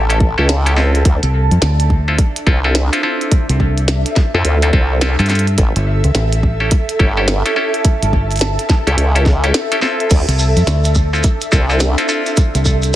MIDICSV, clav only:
0, 0, Header, 1, 2, 480
1, 0, Start_track
1, 0, Key_signature, -1, "minor"
1, 0, Tempo, 566038
1, 891, Time_signature, 4, 2, 24, 8
1, 10987, End_track
2, 0, Start_track
2, 0, Title_t, "Clav"
2, 0, Program_c, 0, 7
2, 80, Note_on_c, 0, 64, 68
2, 81, Note_on_c, 0, 61, 77
2, 81, Note_on_c, 0, 67, 70
2, 81, Note_on_c, 0, 69, 82
2, 157, Note_off_c, 0, 61, 0
2, 157, Note_off_c, 0, 64, 0
2, 157, Note_off_c, 0, 67, 0
2, 157, Note_off_c, 0, 69, 0
2, 319, Note_on_c, 0, 61, 94
2, 320, Note_on_c, 0, 64, 92
2, 320, Note_on_c, 0, 69, 109
2, 321, Note_on_c, 0, 67, 88
2, 404, Note_off_c, 0, 61, 0
2, 404, Note_off_c, 0, 69, 0
2, 405, Note_off_c, 0, 64, 0
2, 405, Note_off_c, 0, 67, 0
2, 559, Note_on_c, 0, 64, 74
2, 560, Note_on_c, 0, 61, 81
2, 560, Note_on_c, 0, 67, 75
2, 561, Note_on_c, 0, 69, 88
2, 628, Note_off_c, 0, 64, 0
2, 629, Note_off_c, 0, 61, 0
2, 629, Note_off_c, 0, 67, 0
2, 629, Note_off_c, 0, 69, 0
2, 649, Note_on_c, 0, 69, 91
2, 650, Note_on_c, 0, 64, 74
2, 650, Note_on_c, 0, 65, 78
2, 651, Note_on_c, 0, 60, 88
2, 1725, Note_off_c, 0, 69, 0
2, 1726, Note_off_c, 0, 60, 0
2, 1726, Note_off_c, 0, 64, 0
2, 1726, Note_off_c, 0, 65, 0
2, 1763, Note_on_c, 0, 64, 70
2, 1764, Note_on_c, 0, 60, 76
2, 1764, Note_on_c, 0, 69, 85
2, 1765, Note_on_c, 0, 65, 68
2, 1846, Note_off_c, 0, 64, 0
2, 1847, Note_off_c, 0, 60, 0
2, 1847, Note_off_c, 0, 65, 0
2, 1847, Note_off_c, 0, 69, 0
2, 2090, Note_on_c, 0, 65, 87
2, 2091, Note_on_c, 0, 60, 100
2, 2091, Note_on_c, 0, 64, 92
2, 2091, Note_on_c, 0, 69, 109
2, 2206, Note_off_c, 0, 60, 0
2, 2206, Note_off_c, 0, 64, 0
2, 2206, Note_off_c, 0, 65, 0
2, 2206, Note_off_c, 0, 69, 0
2, 2241, Note_on_c, 0, 64, 80
2, 2242, Note_on_c, 0, 60, 91
2, 2242, Note_on_c, 0, 65, 85
2, 2242, Note_on_c, 0, 69, 103
2, 2325, Note_off_c, 0, 64, 0
2, 2325, Note_off_c, 0, 65, 0
2, 2325, Note_off_c, 0, 69, 0
2, 2326, Note_off_c, 0, 60, 0
2, 2482, Note_on_c, 0, 69, 94
2, 2483, Note_on_c, 0, 64, 79
2, 2483, Note_on_c, 0, 65, 78
2, 2484, Note_on_c, 0, 60, 85
2, 2558, Note_off_c, 0, 64, 0
2, 2558, Note_off_c, 0, 65, 0
2, 2558, Note_off_c, 0, 69, 0
2, 2559, Note_off_c, 0, 60, 0
2, 2571, Note_on_c, 0, 65, 88
2, 2571, Note_on_c, 0, 69, 95
2, 2572, Note_on_c, 0, 64, 84
2, 2573, Note_on_c, 0, 60, 91
2, 3646, Note_off_c, 0, 64, 0
2, 3646, Note_off_c, 0, 65, 0
2, 3646, Note_off_c, 0, 69, 0
2, 3647, Note_off_c, 0, 60, 0
2, 3685, Note_on_c, 0, 60, 87
2, 3685, Note_on_c, 0, 65, 82
2, 3686, Note_on_c, 0, 64, 83
2, 3686, Note_on_c, 0, 69, 95
2, 3887, Note_off_c, 0, 65, 0
2, 3888, Note_off_c, 0, 60, 0
2, 3888, Note_off_c, 0, 64, 0
2, 3888, Note_off_c, 0, 69, 0
2, 3924, Note_on_c, 0, 60, 75
2, 3924, Note_on_c, 0, 64, 68
2, 3924, Note_on_c, 0, 65, 67
2, 3924, Note_on_c, 0, 69, 84
2, 3999, Note_off_c, 0, 60, 0
2, 3999, Note_off_c, 0, 64, 0
2, 3999, Note_off_c, 0, 65, 0
2, 3999, Note_off_c, 0, 69, 0
2, 4011, Note_on_c, 0, 60, 91
2, 4011, Note_on_c, 0, 64, 77
2, 4011, Note_on_c, 0, 69, 98
2, 4012, Note_on_c, 0, 65, 80
2, 4230, Note_off_c, 0, 60, 0
2, 4230, Note_off_c, 0, 64, 0
2, 4230, Note_off_c, 0, 69, 0
2, 4231, Note_off_c, 0, 65, 0
2, 4252, Note_on_c, 0, 60, 90
2, 4252, Note_on_c, 0, 64, 82
2, 4252, Note_on_c, 0, 65, 82
2, 4252, Note_on_c, 0, 69, 102
2, 4380, Note_off_c, 0, 64, 0
2, 4380, Note_off_c, 0, 65, 0
2, 4380, Note_off_c, 0, 69, 0
2, 4381, Note_off_c, 0, 60, 0
2, 4400, Note_on_c, 0, 69, 102
2, 4401, Note_on_c, 0, 64, 85
2, 4402, Note_on_c, 0, 60, 90
2, 4402, Note_on_c, 0, 65, 87
2, 4477, Note_off_c, 0, 64, 0
2, 4477, Note_off_c, 0, 69, 0
2, 4478, Note_off_c, 0, 60, 0
2, 4478, Note_off_c, 0, 65, 0
2, 4491, Note_on_c, 0, 64, 70
2, 4491, Note_on_c, 0, 65, 71
2, 4492, Note_on_c, 0, 60, 77
2, 4493, Note_on_c, 0, 69, 84
2, 4633, Note_off_c, 0, 60, 0
2, 4633, Note_off_c, 0, 64, 0
2, 4633, Note_off_c, 0, 65, 0
2, 4634, Note_off_c, 0, 69, 0
2, 5599, Note_on_c, 0, 64, 67
2, 5599, Note_on_c, 0, 69, 83
2, 5600, Note_on_c, 0, 61, 75
2, 5601, Note_on_c, 0, 67, 71
2, 5684, Note_off_c, 0, 61, 0
2, 5684, Note_off_c, 0, 64, 0
2, 5684, Note_off_c, 0, 69, 0
2, 5685, Note_off_c, 0, 67, 0
2, 5931, Note_on_c, 0, 61, 104
2, 5931, Note_on_c, 0, 64, 90
2, 5932, Note_on_c, 0, 67, 93
2, 5933, Note_on_c, 0, 69, 105
2, 6046, Note_off_c, 0, 61, 0
2, 6046, Note_off_c, 0, 64, 0
2, 6047, Note_off_c, 0, 67, 0
2, 6047, Note_off_c, 0, 69, 0
2, 6081, Note_on_c, 0, 64, 83
2, 6082, Note_on_c, 0, 61, 89
2, 6082, Note_on_c, 0, 67, 82
2, 6082, Note_on_c, 0, 69, 101
2, 6165, Note_off_c, 0, 61, 0
2, 6165, Note_off_c, 0, 64, 0
2, 6165, Note_off_c, 0, 69, 0
2, 6166, Note_off_c, 0, 67, 0
2, 6322, Note_on_c, 0, 64, 80
2, 6323, Note_on_c, 0, 61, 85
2, 6323, Note_on_c, 0, 67, 76
2, 6323, Note_on_c, 0, 69, 92
2, 6398, Note_off_c, 0, 61, 0
2, 6398, Note_off_c, 0, 64, 0
2, 6398, Note_off_c, 0, 67, 0
2, 6398, Note_off_c, 0, 69, 0
2, 6412, Note_on_c, 0, 67, 83
2, 6413, Note_on_c, 0, 61, 89
2, 6413, Note_on_c, 0, 69, 102
2, 6414, Note_on_c, 0, 64, 81
2, 7487, Note_off_c, 0, 61, 0
2, 7487, Note_off_c, 0, 67, 0
2, 7487, Note_off_c, 0, 69, 0
2, 7488, Note_off_c, 0, 64, 0
2, 7521, Note_on_c, 0, 61, 87
2, 7521, Note_on_c, 0, 67, 81
2, 7521, Note_on_c, 0, 69, 97
2, 7523, Note_on_c, 0, 64, 83
2, 7725, Note_off_c, 0, 61, 0
2, 7726, Note_off_c, 0, 64, 0
2, 7726, Note_off_c, 0, 67, 0
2, 7726, Note_off_c, 0, 69, 0
2, 7762, Note_on_c, 0, 69, 84
2, 7763, Note_on_c, 0, 61, 77
2, 7763, Note_on_c, 0, 64, 69
2, 7763, Note_on_c, 0, 67, 72
2, 7838, Note_off_c, 0, 61, 0
2, 7838, Note_off_c, 0, 64, 0
2, 7838, Note_off_c, 0, 67, 0
2, 7838, Note_off_c, 0, 69, 0
2, 8002, Note_on_c, 0, 67, 92
2, 8003, Note_on_c, 0, 61, 101
2, 8004, Note_on_c, 0, 64, 93
2, 8004, Note_on_c, 0, 69, 110
2, 8086, Note_off_c, 0, 61, 0
2, 8086, Note_off_c, 0, 67, 0
2, 8086, Note_off_c, 0, 69, 0
2, 8087, Note_off_c, 0, 64, 0
2, 8240, Note_on_c, 0, 64, 72
2, 8241, Note_on_c, 0, 67, 74
2, 8241, Note_on_c, 0, 69, 89
2, 8242, Note_on_c, 0, 61, 83
2, 8309, Note_off_c, 0, 64, 0
2, 8309, Note_off_c, 0, 69, 0
2, 8310, Note_off_c, 0, 61, 0
2, 8310, Note_off_c, 0, 67, 0
2, 8328, Note_on_c, 0, 60, 89
2, 8328, Note_on_c, 0, 64, 77
2, 8328, Note_on_c, 0, 69, 92
2, 8329, Note_on_c, 0, 65, 75
2, 9404, Note_off_c, 0, 69, 0
2, 9405, Note_off_c, 0, 60, 0
2, 9405, Note_off_c, 0, 64, 0
2, 9405, Note_off_c, 0, 65, 0
2, 9440, Note_on_c, 0, 60, 78
2, 9442, Note_on_c, 0, 64, 67
2, 9442, Note_on_c, 0, 69, 81
2, 9443, Note_on_c, 0, 65, 70
2, 9524, Note_off_c, 0, 60, 0
2, 9525, Note_off_c, 0, 69, 0
2, 9526, Note_off_c, 0, 64, 0
2, 9526, Note_off_c, 0, 65, 0
2, 9767, Note_on_c, 0, 60, 102
2, 9767, Note_on_c, 0, 65, 88
2, 9767, Note_on_c, 0, 69, 108
2, 9769, Note_on_c, 0, 64, 94
2, 9884, Note_off_c, 0, 60, 0
2, 9884, Note_off_c, 0, 65, 0
2, 9884, Note_off_c, 0, 69, 0
2, 9885, Note_off_c, 0, 64, 0
2, 9918, Note_on_c, 0, 65, 81
2, 9918, Note_on_c, 0, 69, 100
2, 9919, Note_on_c, 0, 60, 87
2, 9919, Note_on_c, 0, 64, 81
2, 10003, Note_off_c, 0, 69, 0
2, 10004, Note_off_c, 0, 60, 0
2, 10004, Note_off_c, 0, 64, 0
2, 10004, Note_off_c, 0, 65, 0
2, 10158, Note_on_c, 0, 64, 76
2, 10159, Note_on_c, 0, 60, 81
2, 10159, Note_on_c, 0, 69, 92
2, 10160, Note_on_c, 0, 65, 77
2, 10236, Note_off_c, 0, 60, 0
2, 10236, Note_off_c, 0, 64, 0
2, 10236, Note_off_c, 0, 69, 0
2, 10237, Note_off_c, 0, 65, 0
2, 10249, Note_on_c, 0, 64, 82
2, 10249, Note_on_c, 0, 69, 100
2, 10250, Note_on_c, 0, 60, 93
2, 10251, Note_on_c, 0, 65, 85
2, 10987, Note_off_c, 0, 60, 0
2, 10987, Note_off_c, 0, 64, 0
2, 10987, Note_off_c, 0, 65, 0
2, 10987, Note_off_c, 0, 69, 0
2, 10987, End_track
0, 0, End_of_file